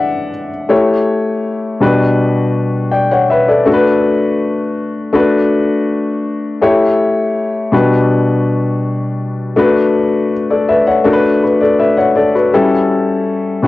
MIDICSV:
0, 0, Header, 1, 2, 480
1, 0, Start_track
1, 0, Tempo, 738916
1, 462, Time_signature, 4, 2, 24, 8
1, 8883, End_track
2, 0, Start_track
2, 0, Title_t, "Grand piano"
2, 0, Program_c, 0, 0
2, 0, Control_c, 0, 64, 127
2, 0, Note_on_c, 0, 52, 54
2, 0, Note_on_c, 0, 56, 47
2, 0, Note_on_c, 0, 62, 60
2, 0, Note_on_c, 0, 74, 95
2, 0, Note_on_c, 0, 76, 96
2, 0, Note_on_c, 0, 78, 92
2, 191, Note_off_c, 0, 52, 0
2, 194, Note_off_c, 0, 56, 0
2, 195, Note_off_c, 0, 62, 0
2, 318, Note_off_c, 0, 78, 0
2, 448, Note_on_c, 0, 57, 73
2, 450, Note_on_c, 0, 64, 68
2, 452, Note_on_c, 0, 67, 64
2, 454, Note_on_c, 0, 73, 79
2, 471, Control_c, 0, 64, 0
2, 472, Note_off_c, 0, 74, 0
2, 472, Note_off_c, 0, 76, 0
2, 597, Control_c, 0, 64, 127
2, 1172, Note_on_c, 0, 47, 71
2, 1175, Note_off_c, 0, 57, 0
2, 1176, Note_off_c, 0, 64, 0
2, 1176, Note_on_c, 0, 55, 65
2, 1177, Note_off_c, 0, 67, 0
2, 1178, Note_off_c, 0, 73, 0
2, 1179, Note_on_c, 0, 62, 67
2, 1180, Note_on_c, 0, 66, 67
2, 1187, Note_on_c, 0, 71, 79
2, 1191, Control_c, 0, 64, 0
2, 1300, Control_c, 0, 64, 127
2, 1890, Note_off_c, 0, 71, 0
2, 1894, Note_on_c, 0, 79, 63
2, 1897, Note_on_c, 0, 74, 55
2, 2012, Note_off_c, 0, 79, 0
2, 2013, Note_off_c, 0, 74, 0
2, 2023, Note_on_c, 0, 78, 72
2, 2027, Note_on_c, 0, 73, 59
2, 2136, Note_off_c, 0, 78, 0
2, 2138, Note_off_c, 0, 73, 0
2, 2143, Note_on_c, 0, 76, 67
2, 2152, Note_on_c, 0, 71, 62
2, 2257, Note_off_c, 0, 76, 0
2, 2261, Note_off_c, 0, 71, 0
2, 2261, Note_on_c, 0, 74, 65
2, 2265, Note_on_c, 0, 69, 58
2, 2353, Note_off_c, 0, 47, 0
2, 2355, Note_off_c, 0, 55, 0
2, 2356, Note_off_c, 0, 62, 0
2, 2357, Note_off_c, 0, 66, 0
2, 2374, Note_on_c, 0, 57, 76
2, 2378, Note_on_c, 0, 62, 70
2, 2379, Note_off_c, 0, 69, 0
2, 2383, Note_on_c, 0, 66, 72
2, 2389, Note_on_c, 0, 69, 66
2, 2391, Control_c, 0, 64, 0
2, 2427, Note_on_c, 0, 71, 82
2, 2428, Note_off_c, 0, 69, 0
2, 2489, Note_off_c, 0, 74, 0
2, 2499, Control_c, 0, 64, 127
2, 3319, Note_off_c, 0, 57, 0
2, 3320, Note_off_c, 0, 62, 0
2, 3323, Note_off_c, 0, 66, 0
2, 3331, Note_on_c, 0, 57, 79
2, 3335, Note_on_c, 0, 62, 76
2, 3337, Note_off_c, 0, 71, 0
2, 3344, Note_on_c, 0, 66, 75
2, 3347, Note_on_c, 0, 71, 83
2, 3348, Control_c, 0, 64, 0
2, 3483, Control_c, 0, 64, 127
2, 4277, Note_off_c, 0, 57, 0
2, 4279, Note_off_c, 0, 62, 0
2, 4283, Note_off_c, 0, 66, 0
2, 4285, Note_off_c, 0, 71, 0
2, 4296, Note_on_c, 0, 57, 74
2, 4300, Note_on_c, 0, 67, 72
2, 4301, Note_on_c, 0, 64, 75
2, 4303, Note_on_c, 0, 73, 83
2, 4308, Control_c, 0, 64, 0
2, 4435, Control_c, 0, 64, 127
2, 5014, Note_on_c, 0, 47, 75
2, 5017, Note_on_c, 0, 55, 65
2, 5018, Note_off_c, 0, 57, 0
2, 5020, Note_off_c, 0, 67, 0
2, 5021, Note_off_c, 0, 64, 0
2, 5021, Note_on_c, 0, 62, 66
2, 5022, Note_off_c, 0, 73, 0
2, 5024, Note_on_c, 0, 66, 68
2, 5027, Note_on_c, 0, 71, 78
2, 5030, Control_c, 0, 64, 0
2, 5136, Control_c, 0, 64, 127
2, 6193, Note_off_c, 0, 47, 0
2, 6195, Note_off_c, 0, 55, 0
2, 6196, Note_off_c, 0, 62, 0
2, 6198, Note_off_c, 0, 66, 0
2, 6200, Note_off_c, 0, 71, 0
2, 6212, Note_on_c, 0, 57, 77
2, 6216, Note_on_c, 0, 62, 67
2, 6224, Note_on_c, 0, 66, 70
2, 6228, Control_c, 0, 64, 0
2, 6230, Note_on_c, 0, 71, 83
2, 6329, Control_c, 0, 64, 127
2, 6695, Note_off_c, 0, 71, 0
2, 6824, Note_on_c, 0, 74, 64
2, 6827, Note_on_c, 0, 69, 60
2, 6936, Note_off_c, 0, 74, 0
2, 6938, Note_off_c, 0, 69, 0
2, 6943, Note_on_c, 0, 76, 68
2, 6946, Note_on_c, 0, 71, 54
2, 7055, Note_off_c, 0, 76, 0
2, 7057, Note_off_c, 0, 71, 0
2, 7061, Note_on_c, 0, 78, 67
2, 7066, Note_on_c, 0, 73, 53
2, 7156, Note_off_c, 0, 57, 0
2, 7159, Note_off_c, 0, 62, 0
2, 7162, Note_off_c, 0, 66, 0
2, 7173, Note_on_c, 0, 57, 79
2, 7177, Note_on_c, 0, 62, 70
2, 7183, Note_on_c, 0, 66, 71
2, 7188, Control_c, 0, 64, 0
2, 7188, Note_on_c, 0, 70, 68
2, 7226, Note_off_c, 0, 70, 0
2, 7230, Note_on_c, 0, 71, 89
2, 7288, Note_off_c, 0, 78, 0
2, 7291, Note_off_c, 0, 73, 0
2, 7303, Control_c, 0, 64, 127
2, 7417, Note_off_c, 0, 66, 0
2, 7417, Note_off_c, 0, 71, 0
2, 7427, Note_on_c, 0, 71, 64
2, 7431, Note_on_c, 0, 66, 55
2, 7538, Note_off_c, 0, 71, 0
2, 7540, Note_off_c, 0, 66, 0
2, 7541, Note_on_c, 0, 74, 68
2, 7550, Note_on_c, 0, 69, 55
2, 7654, Note_off_c, 0, 74, 0
2, 7659, Note_off_c, 0, 69, 0
2, 7662, Note_on_c, 0, 76, 66
2, 7665, Note_on_c, 0, 71, 58
2, 7775, Note_off_c, 0, 76, 0
2, 7776, Note_on_c, 0, 78, 69
2, 7777, Note_off_c, 0, 71, 0
2, 7782, Note_on_c, 0, 73, 61
2, 7892, Note_off_c, 0, 78, 0
2, 7895, Note_off_c, 0, 73, 0
2, 7897, Note_on_c, 0, 74, 68
2, 7903, Note_on_c, 0, 69, 55
2, 8012, Note_off_c, 0, 74, 0
2, 8015, Note_off_c, 0, 69, 0
2, 8023, Note_on_c, 0, 71, 61
2, 8024, Note_on_c, 0, 66, 53
2, 8117, Note_off_c, 0, 57, 0
2, 8119, Note_off_c, 0, 62, 0
2, 8143, Note_on_c, 0, 55, 75
2, 8144, Note_on_c, 0, 61, 64
2, 8146, Note_on_c, 0, 69, 80
2, 8147, Control_c, 0, 64, 0
2, 8147, Note_on_c, 0, 64, 66
2, 8249, Note_off_c, 0, 71, 0
2, 8250, Note_off_c, 0, 66, 0
2, 8268, Control_c, 0, 64, 127
2, 8847, Note_off_c, 0, 55, 0
2, 8851, Note_on_c, 0, 47, 70
2, 8856, Note_on_c, 0, 55, 66
2, 8858, Note_on_c, 0, 62, 65
2, 8861, Note_off_c, 0, 61, 0
2, 8861, Note_on_c, 0, 66, 64
2, 8863, Note_off_c, 0, 64, 0
2, 8863, Note_off_c, 0, 69, 0
2, 8867, Control_c, 0, 64, 0
2, 8883, Note_off_c, 0, 47, 0
2, 8883, Note_off_c, 0, 55, 0
2, 8883, Note_off_c, 0, 62, 0
2, 8883, Note_off_c, 0, 66, 0
2, 8883, End_track
0, 0, End_of_file